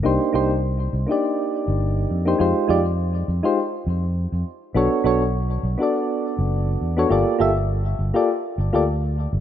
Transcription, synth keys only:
0.03 A#3 D4 D#4 G4 C5
0.33 A#3 D4 D#4 G4 C5
1.07 A#3 D4 D#4
1.11 G4 D5
2.25 A#3 D4 D#4 G4 C5
2.38 G#3 D#4 F4 G4 C5
2.68 G#3 D#4 F4 G4 D5
3.43 G#3 D#4 F4 G4 C5
4.74 B3 D4 F#4 A4 C#5
5.04 B3 D4 F#4 A4 C#5
5.78 B3 D4 F#4 A4
5.83 D5
6.97 B3 D4 F#4 A4 C#5
7.09 A#3 F4 G4 A4 D5
7.38 A#3 F4 G4 A4 E5
8.14 A#3 F4 G4 A4 D5
8.73 A#3 F4 G4 A4 D5

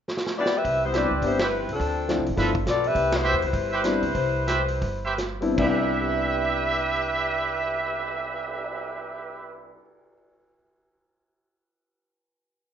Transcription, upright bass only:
0.65 C2
1.11 C#2
1.22 G1
1.68 C2
1.80 D2
2.18 C2
2.29 F#1
2.37 G1
2.66 B1
2.95 C2
3.33 E2
3.43 C#2
3.53 G1
4.03 C#2
4.15 C2
4.82 G1
5.58 C2

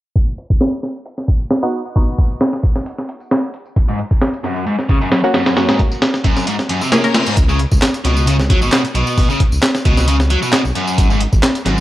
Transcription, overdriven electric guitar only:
3.88 G#2
4.44 F#2
4.67 G#2
4.89 C#3
5.02 F#2
5.12 F#2
5.34 F#2
5.69 G#2
6.24 F#2
6.47 G#2
6.69 F#2
6.82 C3
6.92 C3
7.15 C3
7.27 G#2
7.49 C#3
8.05 B2
8.27 C#3
8.50 F#3
8.62 B2
8.72 B2
8.95 B2
9.30 C#3
9.86 B2
10.08 C#3
10.30 F#3
10.42 B2
10.53 B2
10.75 F#2
11.10 G#2
11.66 F#2

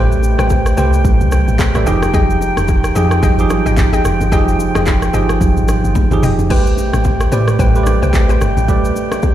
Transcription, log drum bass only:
Already playing: A1
0.39 A1
0.77 C2
1.05 A1
1.21 C2
1.48 A1
1.75 A1
1.87 F1
2.14 F1
2.57 F1
2.96 F2
3.23 G1
3.66 G#1
3.77 G1
4.05 F1
4.21 G1
4.32 F1
4.75 F1
5.14 G1
5.41 F1
5.57 G#1
5.84 G1
6.12 G1
6.23 F1
6.50 A1
6.93 A1
7.32 A2
7.59 A1
8.02 C2
8.14 A1
8.41 G1
8.57 A1

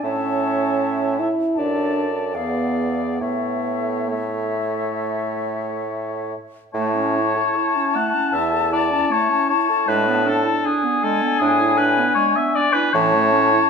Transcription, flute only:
0.03 A5
1.55 A5
2.35 F5
3.21 E5
4.11 E5
6.73 A5
10.64 G#5
12.93 A5

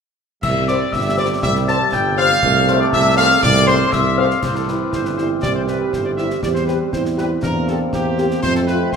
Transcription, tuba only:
0.43 C2
0.93 G1
1.43 C2
1.93 G1
2.43 C2
2.93 C2
3.43 C2
3.93 C2
4.43 C2
4.93 G1
5.44 C2
5.93 G1
6.43 E2
6.93 E2
7.43 E2
7.93 E2
8.43 F2
8.93 C2

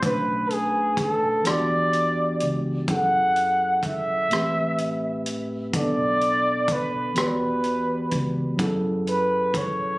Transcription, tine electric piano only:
0.01 B2 A3 C#4
0.05 D4 B4
1.43 E3 B3 D4
1.47 F#4 G4
2.86 F#3 C#4 E4
2.91 G#4 A4
4.29 A2 A3 C4
4.33 G4 B4
5.72 B2 B3 D4
5.76 A4 D5
7.14 E3 B3 F#4 G4
7.19 C#5
7.26 D5
8.56 F#3 C#4 E4
8.61 G#4 A4

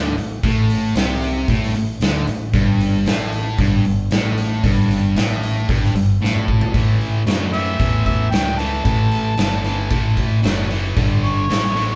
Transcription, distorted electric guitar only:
Already playing: D3
0.17 A2
0.44 A2
0.96 C3
1.49 A2
1.76 A2
2.02 D3
2.28 A2
2.54 G2
3.07 A2
3.60 G2
3.86 G2
4.12 A2
4.64 G2
5.17 A2
5.69 G2
5.96 G2
6.22 A2
6.74 A2 E3
7.27 A2 F#3
7.53 A2 E3
7.79 A2 E3
8.31 A2 F#3
8.59 A2 E3
8.84 A2 E3
9.38 A2 F#3
9.64 A2 E3
9.91 A2 E3
10.43 A2 F#3
10.70 A2 E3
10.97 G2 D3
11.49 G2 E3
11.76 G2 D3

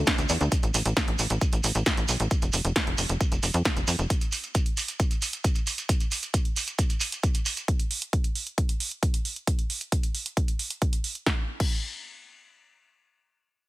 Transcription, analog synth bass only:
0.18 D2
0.30 E2
0.41 D2
0.63 A1
0.74 A1
0.86 A1
1.08 A1
1.19 A1
1.30 A1
1.53 A1
1.64 A1
1.75 A1
1.98 A1
2.09 B1
2.20 A1
2.42 F1
2.54 F1
2.65 F1
2.87 F1
2.98 F1
3.09 F1
3.32 F1
3.43 F1
3.54 F2
3.77 F1
3.88 F2
3.99 F1

